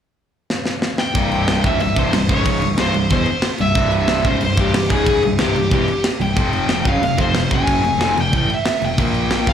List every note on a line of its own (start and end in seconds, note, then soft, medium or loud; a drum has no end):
0.50 snare medium
0.66 snare medium
0.82 snare loud
0.98 1.61 G5 medium
0.98 snare loud
1.14 1.61 C1 medium
1.14 1.63 C2 medium
1.14 1.64 G2 loud
1.14 1.64 C3 loud
1.14 kick loud
1.14 crash medium
1.32 crash medium
1.48 snare loud
1.48 crash medium
1.64 1.79 C#1 medium
1.64 1.80 C#2 medium
1.64 1.80 G#2 medium
1.64 1.80 C#3 medium
1.64 1.80 E5 medium
1.64 kick loud
1.64 crash medium
1.80 1.96 C1 medium
1.80 1.94 C2 medium
1.80 1.94 G2 medium
1.80 1.96 E5 medium
1.80 crash medium
1.96 2.12 C1 loud
1.96 2.12 C2 medium
1.96 2.12 G2 medium
1.96 2.13 C3 loud
1.96 2.31 C5 medium
1.96 kick loud
1.96 crash medium
2.13 2.28 C1 medium
2.13 2.29 C2 medium
2.13 2.29 G2 medium
2.13 snare loud
2.13 crash medium
2.29 2.60 C#1 medium
2.29 2.62 C#2 medium
2.29 2.62 G#2 medium
2.29 2.62 C#3 loud
2.29 2.64 C#5 medium
2.29 kick loud
2.29 crash medium
2.46 kick loud
2.46 crash medium
2.62 2.77 C1 medium
2.62 2.75 C2 medium
2.62 2.76 G2 medium
2.62 crash medium
2.77 2.93 C1 medium
2.77 2.93 C2 medium
2.77 2.94 G2 medium
2.77 2.94 C3 medium
2.77 3.12 C5 medium
2.77 snare loud
2.77 crash medium
2.94 3.10 C1 medium
2.94 3.08 C2 medium
2.94 3.08 G2 medium
2.94 crash medium
3.10 3.26 E1 medium
3.10 3.27 E2 medium
3.10 3.27 B2 loud
3.10 3.27 E3 loud
3.10 3.42 C5 medium
3.10 kick loud
3.10 crash medium
3.26 crash medium
3.42 snare loud
3.42 crash medium
3.58 3.74 C1 medium
3.58 3.73 C2 medium
3.58 3.73 G2 medium
3.58 4.28 E5 medium
3.58 crash medium
3.75 4.21 C1 loud
3.75 4.24 C2 medium
3.75 4.25 G2 loud
3.75 4.25 C3 loud
3.75 kick loud
3.75 crash medium
3.92 crash soft
4.08 snare loud
4.08 crash medium
4.24 4.41 C#1 medium
4.24 4.40 C#2 medium
4.24 4.41 G#2 medium
4.24 4.41 C#3 loud
4.24 4.41 C5 medium
4.24 kick loud
4.24 crash medium
4.41 4.57 C1 medium
4.41 4.54 C2 medium
4.41 4.55 G2 medium
4.41 crash medium
4.45 4.59 C5 loud
4.57 4.73 C1 loud
4.57 4.72 C2 medium
4.57 4.73 G2 loud
4.57 4.74 C3 loud
4.57 4.90 G4 medium
4.57 kick loud
4.57 crash medium
4.74 4.90 C1 medium
4.74 4.87 C2 medium
4.74 4.87 G2 medium
4.74 snare loud
4.74 crash medium
4.90 5.21 C#1 medium
4.90 5.22 C#2 medium
4.90 5.22 G#2 loud
4.90 5.23 C#3 loud
4.90 5.22 G#4 medium
4.90 kick loud
4.90 crash medium
5.07 kick loud
5.07 crash medium
5.22 5.39 C1 medium
5.22 5.36 C2 medium
5.22 5.36 G2 medium
5.22 crash medium
5.38 5.55 C1 medium
5.38 5.54 C2 medium
5.38 5.55 G2 medium
5.38 5.55 C3 loud
5.38 5.71 G4 medium
5.38 snare loud
5.38 crash medium
5.55 5.71 C1 medium
5.55 5.69 C2 medium
5.55 5.69 G2 medium
5.55 crash medium
5.71 5.87 E1 medium
5.71 5.88 E2 medium
5.71 5.88 B2 medium
5.71 5.89 E3 loud
5.71 6.03 G4 medium
5.71 kick loud
5.71 crash medium
5.88 crash medium
6.04 snare loud
6.04 crash medium
6.20 6.36 C1 medium
6.20 6.34 C2 medium
6.20 6.34 G2 medium
6.20 6.83 G5 medium
6.20 crash medium
6.37 6.83 F1 medium
6.37 6.83 F2 medium
6.37 6.84 C3 medium
6.37 6.85 F3 medium
6.37 kick loud
6.37 crash medium
6.53 crash medium
6.69 snare loud
6.69 crash medium
6.84 7.01 F#1 loud
6.84 7.01 F#2 medium
6.84 7.01 C#3 medium
6.84 7.02 F#3 medium
6.84 kick loud
6.84 crash medium
6.88 7.03 F5 loud
7.02 7.17 F1 medium
7.02 7.15 F2 medium
7.02 7.15 C3 medium
7.02 7.19 F5 medium
7.02 crash medium
7.17 7.34 F1 loud
7.17 7.34 F2 medium
7.17 7.34 C3 loud
7.17 7.34 F3 medium
7.17 7.53 C5 medium
7.17 kick loud
7.17 crash medium
7.35 7.50 F1 medium
7.35 7.48 F2 medium
7.35 7.48 C3 medium
7.35 snare loud
7.35 crash medium
7.50 7.82 F#1 medium
7.50 7.82 F#2 medium
7.50 7.84 C#3 loud
7.50 7.84 F#3 loud
7.50 kick loud
7.50 crash medium
7.54 8.20 G#5 medium
7.67 kick loud
7.67 crash medium
7.83 7.98 F1 medium
7.83 7.97 F2 medium
7.83 7.97 C3 medium
7.83 crash medium
7.98 8.15 F1 medium
7.98 8.15 F2 medium
7.98 8.15 C3 medium
7.98 8.16 F3 medium
7.98 snare loud
7.98 crash medium
8.16 8.32 F1 medium
8.16 8.29 F2 medium
8.16 8.29 C3 medium
8.16 crash medium
8.20 8.34 G5 loud
8.33 8.48 A1 loud
8.33 8.49 A2 medium
8.33 8.49 E3 loud
8.33 8.50 A3 loud
8.33 kick loud
8.33 crash medium
8.38 8.54 G5 loud
8.50 crash medium
8.54 8.85 E5 medium
8.66 snare loud
8.66 crash medium
8.82 8.97 F1 medium
8.82 8.95 F2 medium
8.82 8.96 C3 medium
8.82 9.51 G5 medium
8.82 crash medium
8.97 9.44 A#1 loud
8.97 9.45 A#2 medium
8.97 9.46 F3 loud
8.97 9.47 A#3 loud
8.97 kick loud
8.97 crash medium
9.14 crash medium
9.31 snare loud
9.31 crash medium
9.47 9.53 A#1 medium
9.47 9.53 A#2 medium
9.47 9.53 F3 medium
9.47 9.53 A#3 medium
9.47 9.53 F5 loud
9.47 kick loud
9.47 crash medium